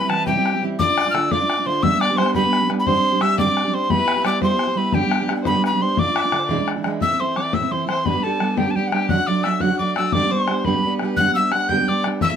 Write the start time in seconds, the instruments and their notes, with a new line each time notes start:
Already playing: fiddle B4, tin whistle B5
0.01 steel-string acoustic guitar G3 C4 E4
0.09 steel-string acoustic guitar E3 G3 C4 E4, tin whistle A5, bodhran
0.26 steel-string acoustic guitar C3 E3 G3 C4 E4, fiddle G4, tin whistle G5, bodhran
0.36 steel-string acoustic guitar G3 C4 E4
0.46 bodhran
0.53 steel-string acoustic guitar G3 C4 E4
0.62 steel-string acoustic guitar E3 G3 C4 E4
0.79 steel-string acoustic guitar D3 A3 D4 F4, fiddle D5, tin whistle D6, bodhran
0.88 steel-string acoustic guitar A3 D4 F4
0.98 bodhran
1.05 steel-string acoustic guitar A3 D4 F4
1.10 steel-string acoustic guitar D3, tin whistle E6 F6
1.15 steel-string acoustic guitar A3 D4 F4, bodhran
1.31 steel-string acoustic guitar D3 A3 D4 F4, fiddle D5, tin whistle D6, bodhran
1.40 steel-string acoustic guitar A3 D4 F4
1.50 bodhran
1.57 steel-string acoustic guitar A3 D4 F4
1.66 steel-string acoustic guitar D3 A3 D4 F4, fiddle C5, tin whistle C6
1.83 steel-string acoustic guitar G2 D3 G3 B3 D4 G4, fiddle E5, tin whistle E6, bodhran
1.92 steel-string acoustic guitar G3 B3 D4 G4
2.00 fiddle D5, tin whistle D6, bodhran
2.10 steel-string acoustic guitar G3 B3 D4 G4
2.17 steel-string acoustic guitar G3 B3 D4 G4, fiddle C5, tin whistle C6, bodhran
2.26 bodhran
2.34 steel-string acoustic guitar G2 D3 G3 B3 D4 G4, fiddle B4, tin whistle B5, bodhran
2.44 steel-string acoustic guitar G3 B3 D4 G4
2.53 bodhran
2.61 steel-string acoustic guitar G3 B3 D4 G4
2.69 steel-string acoustic guitar G3 B3 D4 G4, bodhran
2.80 tin whistle B5
2.86 steel-string acoustic guitar G2 D3 G3 C4 D4 G4, fiddle C5, tin whistle C6, bodhran
2.95 steel-string acoustic guitar G3 C4 D4 G4
3.12 steel-string acoustic guitar G3 C4 D4 G4
3.20 steel-string acoustic guitar G3 C4 D4 G4, fiddle E5, tin whistle E6, bodhran
3.38 steel-string acoustic guitar G2 D3 G3 C4 D4 G4, fiddle D5, tin whistle D6, bodhran
3.46 steel-string acoustic guitar G3 C4 D4 G4
3.57 bodhran
3.64 steel-string acoustic guitar G3 C4 D4 G4
3.69 steel-string acoustic guitar G3, tin whistle D6
3.73 steel-string acoustic guitar C4 D4 G4, fiddle C5, tin whistle C6
3.89 steel-string acoustic guitar G3 B3 E4 G4, fiddle B4, tin whistle B5, bodhran
3.98 steel-string acoustic guitar B3 E4 G4
4.08 bodhran
4.16 steel-string acoustic guitar B3 E4 G4
4.22 steel-string acoustic guitar G3 B3 E4, fiddle D5 E5, tin whistle D6, bodhran
4.27 steel-string acoustic guitar G4
4.42 steel-string acoustic guitar G3 B3 E4 G4, fiddle C5, tin whistle C6, bodhran
4.50 steel-string acoustic guitar B3 E4 G4
4.59 bodhran
4.67 steel-string acoustic guitar B3 E4 G4
4.75 steel-string acoustic guitar G3 B3 E4 G4, fiddle B4, tin whistle B5
4.92 steel-string acoustic guitar G2 D3 G3 B3 D4 G4, fiddle G4, tin whistle G5, bodhran
5.02 steel-string acoustic guitar G3 B3 D4 G4
5.11 bodhran
5.20 steel-string acoustic guitar G3 B3 D4 G4
5.29 steel-string acoustic guitar G3 B3 D4 G4, bodhran
5.42 steel-string acoustic guitar G2, fiddle C5, bodhran
5.46 steel-string acoustic guitar D3 G3 B3 D4 G4, fiddle B4, tin whistle B5
5.55 steel-string acoustic guitar G3 B3 D4 G4
5.64 fiddle B4, tin whistle B5, bodhran
5.72 steel-string acoustic guitar G3 B3 D4 G4
5.80 steel-string acoustic guitar G3 B3 D4 G4, fiddle C5, tin whistle C6
5.97 steel-string acoustic guitar D3 A3 D4 F4, fiddle D5, tin whistle D6, bodhran
6.07 steel-string acoustic guitar A3 D4 F4
6.16 fiddle E5, bodhran
6.21 steel-string acoustic guitar D4 F4, fiddle D5
6.26 steel-string acoustic guitar A3
6.32 steel-string acoustic guitar D3 A3 D4 F4, bodhran
6.39 fiddle C5
6.44 fiddle D5
6.49 steel-string acoustic guitar E2 B2 E3 G#3 D4 E4, bodhran
6.58 steel-string acoustic guitar E3 G#3 D4 E4
6.68 bodhran
6.76 steel-string acoustic guitar E3 G#3 D4 E4
6.84 steel-string acoustic guitar E3 G#3 D4 E4, bodhran
7.01 steel-string acoustic guitar A2 E3 A3 C4 E4, fiddle E5, tin whistle E6, bodhran
7.11 steel-string acoustic guitar A3 C4 E4
7.19 steel-string acoustic guitar E3 A3 C4 E4, fiddle C5, tin whistle C6
7.36 steel-string acoustic guitar E3 A3 C4 E4, fiddle D5, tin whistle D6, bodhran
7.53 steel-string acoustic guitar A2 E3 A3 C4 E4, fiddle E5, tin whistle E6, bodhran
7.61 steel-string acoustic guitar A3 C4 E4
7.71 steel-string acoustic guitar E3 A3 C4 E4, fiddle C5, tin whistle C6, bodhran
7.87 steel-string acoustic guitar E3 A3 C4 E4, fiddle C5, tin whistle C6, bodhran
8.05 steel-string acoustic guitar G2 D3 G3 B3 D4 G4, fiddle B4, tin whistle B5, bodhran
8.14 steel-string acoustic guitar G3 B3 D4 G4
8.23 steel-string acoustic guitar G3 B3 D4 G4, fiddle A4, tin whistle A5
8.40 steel-string acoustic guitar G3 B3 D4 G4, bodhran
8.57 steel-string acoustic guitar G2 D3 G3 B3 D4 G4, fiddle G4, tin whistle G5, bodhran
8.66 steel-string acoustic guitar G3 B3 D4 G4
8.71 tin whistle A5
8.75 steel-string acoustic guitar G3 B3 D4 G4, fiddle G4, tin whistle G5, bodhran
8.87 tin whistle F#5
8.92 steel-string acoustic guitar G3 B3 D4 G4, fiddle G4, tin whistle G5, bodhran
9.09 steel-string acoustic guitar D3 F#3 A3 D4 F#4, fiddle F#5, tin whistle F#6, bodhran
9.17 steel-string acoustic guitar A3 D4 F#4
9.27 steel-string acoustic guitar F#3 A3 D4 F#4, fiddle D5, tin whistle D6
9.43 steel-string acoustic guitar F#3 A3 D4 F#4, fiddle E5, tin whistle E6, bodhran
9.60 steel-string acoustic guitar D3 F#3 A3 D4 F#4, fiddle F#5, tin whistle F#6, bodhran
9.71 steel-string acoustic guitar A3 D4 F#4
9.79 steel-string acoustic guitar F#3 A3 D4 F#4, fiddle D5, tin whistle D6, bodhran
9.96 steel-string acoustic guitar F#3 A3 D4 F#4, tin whistle E6, bodhran
10.12 steel-string acoustic guitar G2 D3 G3 B3 D4 G4, fiddle D5, tin whistle D6, bodhran
10.23 steel-string acoustic guitar G3 B3 D4 G4
10.31 steel-string acoustic guitar G3 B3 D4 G4, fiddle C5, tin whistle C6
10.48 steel-string acoustic guitar G3 B3 D4 G4, bodhran
10.65 steel-string acoustic guitar G2 D3 G3 B3 D4 G4, fiddle B4, tin whistle B5, bodhran
10.75 steel-string acoustic guitar G3 B3 D4 G4
10.83 steel-string acoustic guitar G3 B3 D4 G4, bodhran
10.99 steel-string acoustic guitar G3 B3 D4, bodhran
11.04 steel-string acoustic guitar G4
11.17 steel-string acoustic guitar G2 D3 G3 B3 D4 G4, fiddle F#5, tin whistle F#6, bodhran
11.28 steel-string acoustic guitar G3 B3 D4 G4
11.35 steel-string acoustic guitar G3 B3 D4, fiddle E5, tin whistle E6
11.39 steel-string acoustic guitar G4
11.52 steel-string acoustic guitar G3 B3 D4 G4, fiddle F#5, tin whistle F#6, bodhran
11.68 steel-string acoustic guitar G2 D3 G3 B3 D4 G4, fiddle G5, tin whistle G6, bodhran
11.79 steel-string acoustic guitar G3 D4 G4
11.87 steel-string acoustic guitar G3 B3 D4 G4, fiddle D5, tin whistle D6, bodhran
12.04 steel-string acoustic guitar G3 B3 D4 G4, bodhran
12.21 steel-string acoustic guitar A2 E3 C4 E4 A4, fiddle E5, tin whistle E6, bodhran
12.31 steel-string acoustic guitar E4 A4